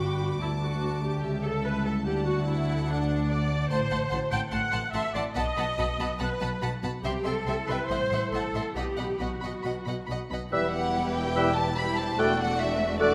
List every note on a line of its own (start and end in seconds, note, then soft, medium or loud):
0.00 0.41 G1 soft
0.00 0.40 G2 soft
0.00 0.42 G2 soft
0.00 0.40 D3 soft
0.00 0.19 B3 soft
0.00 1.02 D4 soft
0.00 0.39 F#4 medium
0.00 0.43 D5 soft
0.00 0.37 G5 soft
0.00 0.37 B5 soft
0.00 1.20 D6 soft
0.21 0.43 B3 soft
0.40 1.22 D2 soft
0.40 1.26 D3 soft
0.40 0.49 E4 medium
0.40 1.20 A5 soft
0.62 1.85 A3 soft
0.62 1.02 F#4 medium
0.83 4.73 A4 soft
1.03 1.26 D4 soft
1.03 1.44 G4 medium
1.24 2.04 C#2 medium
1.24 2.05 C#2 soft
1.24 2.08 C#3 soft
1.24 2.02 E5 soft
1.24 3.67 A5 medium
1.44 2.08 G3 soft
1.44 1.65 A4 medium
1.65 2.08 E4 soft
1.65 1.86 B4 medium
1.86 2.67 A3 soft
1.86 1.94 A4 medium
2.06 3.70 D2 medium
2.06 3.70 D2 soft
2.06 2.88 D3 medium
2.06 2.26 G4 medium
2.06 3.66 F#5 medium
2.26 3.09 D4 soft
2.26 2.47 F#4 medium
2.46 2.87 E4 medium
2.46 3.29 F#4 soft
2.68 3.49 A3 soft
2.88 3.72 D3 soft
2.88 3.29 D4 medium
3.10 3.72 D4 soft
3.29 4.11 F#4 soft
3.29 3.70 D5 medium
3.50 3.90 A3 soft
3.69 3.78 A1 medium
3.69 3.78 A2 medium
3.69 4.51 A2 medium
3.69 4.30 C5 medium
3.69 3.79 F#5 medium
3.69 3.79 A5 medium
3.69 3.78 C6 soft
3.90 3.99 A1 soft
3.90 3.99 A2 medium
3.90 4.71 A3 soft
3.90 3.98 F#5 soft
3.90 3.98 A5 soft
3.90 3.99 C6 soft
4.10 4.19 A1 medium
4.10 4.20 A2 medium
4.10 4.93 F#4 soft
4.10 4.18 F#5 soft
4.10 4.19 A5 soft
4.10 4.20 C6 soft
4.30 4.40 A1 medium
4.30 4.40 A2 medium
4.30 5.13 C4 soft
4.30 4.39 F#5 medium
4.30 4.39 G5 medium
4.30 4.39 A5 soft
4.30 4.38 C6 soft
4.51 4.60 A1 medium
4.51 4.60 A2 medium
4.51 5.37 A2 medium
4.51 4.92 F#5 medium
4.51 4.60 F#5 soft
4.51 4.59 A5 soft
4.51 4.59 C6 soft
4.71 4.81 A1 medium
4.71 4.80 A2 medium
4.71 8.63 A3 soft
4.71 4.80 F#5 soft
4.71 4.80 A5 medium
4.71 4.79 C6 soft
4.93 5.02 A1 medium
4.93 5.02 A2 medium
4.93 5.77 F#4 soft
4.93 5.14 E5 medium
4.93 5.01 F#5 medium
4.93 5.02 A5 medium
4.93 5.02 C6 soft
5.14 5.23 A1 medium
5.14 5.23 A2 medium
5.14 5.37 C4 soft
5.14 5.22 D5 medium
5.14 5.23 F#5 soft
5.14 5.23 A5 soft
5.14 5.23 C6 soft
5.34 5.44 B1 medium
5.34 5.44 B2 medium
5.34 6.19 B2 medium
5.34 6.18 D#5 medium
5.34 5.44 F#5 medium
5.34 5.44 A5 medium
5.34 5.42 B5 medium
5.56 5.65 B1 medium
5.56 5.65 B2 medium
5.56 6.40 F#3 soft
5.56 5.65 F#5 soft
5.56 5.65 A5 medium
5.56 5.64 B5 medium
5.78 5.86 B1 medium
5.78 5.86 B2 medium
5.78 6.61 F#4 soft
5.78 5.86 F#5 medium
5.78 5.86 A5 soft
5.78 5.87 B5 medium
5.99 6.07 B1 medium
5.99 6.07 B2 medium
5.99 6.82 B3 soft
5.99 6.07 F#5 medium
5.99 6.07 A5 medium
5.99 6.08 B5 medium
6.19 6.28 B1 medium
6.19 6.28 B2 medium
6.19 7.06 B2 soft
6.19 6.61 B4 medium
6.19 6.27 F#5 soft
6.19 6.27 A5 soft
6.19 6.27 B5 medium
6.41 6.49 B1 medium
6.41 6.49 B2 medium
6.41 7.06 F#3 soft
6.41 6.49 F#5 medium
6.41 6.49 A5 medium
6.41 6.50 B5 medium
6.61 6.70 B1 medium
6.61 6.70 B2 medium
6.61 7.06 F#4 soft
6.61 6.70 F#5 medium
6.61 6.70 A5 medium
6.61 6.69 B5 medium
6.83 6.91 B1 medium
6.83 6.91 B2 medium
6.83 7.06 B3 soft
6.83 6.91 F#5 soft
6.83 6.91 A5 soft
6.83 6.91 B5 soft
7.04 7.12 C2 medium
7.04 7.12 C3 medium
7.04 7.92 C3 medium
7.04 7.24 G4 medium
7.04 7.12 E5 medium
7.04 7.12 G5 medium
7.04 7.13 C6 medium
7.24 7.34 C2 medium
7.24 7.34 C3 medium
7.24 8.53 C4 soft
7.24 7.68 A4 medium
7.24 7.33 E5 medium
7.24 7.34 G5 medium
7.24 7.32 C6 medium
7.46 7.55 C2 medium
7.46 7.55 C3 medium
7.46 8.31 E4 soft
7.46 7.56 E5 soft
7.46 7.55 G5 soft
7.46 7.54 C6 soft
7.67 7.76 C2 medium
7.67 7.77 C3 medium
7.67 7.92 G3 soft
7.67 7.90 B4 medium
7.67 7.78 E5 medium
7.67 7.78 G5 soft
7.67 7.75 C6 medium
7.88 7.97 A1 medium
7.88 8.78 A2 soft
7.88 7.98 A2 medium
7.88 8.32 C5 medium
7.88 7.99 E5 soft
7.88 7.99 F#5 soft
7.88 7.96 C6 soft
8.10 8.18 A1 soft
8.10 8.20 A2 soft
8.10 8.78 E3 soft
8.10 8.21 E5 soft
8.10 8.20 F#5 soft
8.10 8.18 C6 soft
8.32 8.40 A1 soft
8.32 8.41 A2 soft
8.32 8.78 E4 soft
8.32 8.76 A4 medium
8.32 8.42 E5 soft
8.32 8.42 F#5 soft
8.32 8.40 C6 soft
8.54 8.62 A1 soft
8.54 8.62 A2 soft
8.54 8.78 C4 soft
8.54 8.63 E5 soft
8.54 8.64 F#5 soft
8.54 8.62 C6 soft
8.76 8.84 B1 soft
8.76 8.84 B2 medium
8.76 9.63 B2 soft
8.76 9.20 G4 medium
8.76 8.84 D#5 soft
8.76 8.84 F#5 soft
8.76 8.84 B5 soft
8.97 9.06 B1 soft
8.97 9.05 B2 soft
8.97 9.86 F#3 soft
8.97 9.06 D#5 soft
8.97 9.05 F#5 soft
8.97 9.08 B5 soft
9.19 9.28 B1 medium
9.19 9.28 B2 medium
9.19 10.08 D#4 soft
9.19 10.09 F#4 soft
9.19 9.29 D#5 soft
9.19 9.29 F#5 soft
9.19 9.27 B5 soft
9.41 9.49 B1 soft
9.41 9.50 B2 soft
9.41 10.30 B3 soft
9.41 9.52 D#5 soft
9.41 9.52 F#5 soft
9.41 9.49 B5 soft
9.63 9.71 B1 soft
9.63 9.72 B2 soft
9.63 10.54 B2 soft
9.63 9.73 D#5 soft
9.63 9.73 F#5 soft
9.63 9.71 B5 soft
9.85 9.94 B1 soft
9.85 9.94 B2 soft
9.85 10.55 F#3 soft
9.85 9.95 D#5 soft
9.85 9.96 F#5 soft
9.85 9.93 B5 soft
10.06 10.17 B1 soft
10.06 10.16 B2 soft
10.06 10.55 D#4 soft
10.06 10.14 B5 soft
10.10 10.18 D#5 soft
10.10 10.19 F#5 soft
10.30 10.39 B1 soft
10.30 10.38 B2 soft
10.30 10.72 B3 soft
10.30 10.41 D#5 soft
10.30 10.41 F#5 soft
10.30 10.38 B5 soft
10.51 12.14 E1 medium
10.51 12.14 E2 medium
10.51 12.18 E2 medium
10.51 10.67 G3 soft
10.51 11.73 G3 medium
10.51 10.66 B3 medium
10.51 10.67 E4 medium
10.51 11.74 E4 medium
10.51 11.73 G4 medium
10.51 10.67 B4 medium
10.51 11.74 B4 medium
10.51 10.67 E5 medium
10.51 10.72 E5 medium
10.51 10.72 E6 medium
10.72 11.56 B3 soft
10.72 11.14 F#5 medium
10.94 11.76 E4 soft
11.15 11.97 B4 soft
11.15 11.56 G5 medium
11.34 12.20 B2 soft
11.34 11.51 G3 medium
11.34 11.49 B3 medium
11.34 11.50 E4 medium
11.34 11.50 B4 medium
11.34 11.51 E5 medium
11.34 11.55 E6 medium
11.56 12.20 B3 soft
11.56 11.77 A5 medium
11.77 12.17 G3 medium
11.77 12.17 E4 medium
11.77 12.20 E4 soft
11.77 12.17 G4 medium
11.77 11.85 B4 medium
11.77 11.98 B5 medium
11.97 12.20 B4 soft
11.97 12.18 C5 medium
11.97 12.18 A5 medium
12.18 13.14 E1 medium
12.18 13.14 E2 medium
12.18 13.00 E2 medium
12.18 12.98 A3 medium
12.18 12.33 A3 medium
12.18 12.98 D4 medium
12.18 12.33 F#4 medium
12.18 12.98 F#4 medium
12.18 12.33 A4 medium
12.18 12.99 D5 medium
12.18 12.33 D5 medium
12.18 12.40 G5 medium
12.18 12.38 F#6 medium
12.40 13.14 A3 medium
12.40 12.60 F#5 medium
12.60 13.14 D4 soft
12.60 13.00 E5 medium
12.81 13.14 A4 medium
12.99 13.14 E2 medium
12.99 13.14 A3 medium
12.99 13.14 D4 medium
12.99 13.14 F#4 medium
12.99 13.13 A4 medium
12.99 13.14 D5 medium
12.99 13.14 D5 loud
12.99 13.14 D5 medium
12.99 13.14 F#6 medium